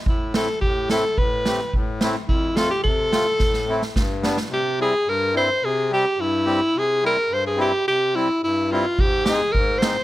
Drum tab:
SD |--o---o-|--o---o-|--o---o-|oo-oo-oo|
BD |o---o---|o---o---|o---o---|o---o---|

SD |--------|--------|--------|--------|
BD |--------|--------|--------|--------|

SD |--o---o-|
BD |o---o---|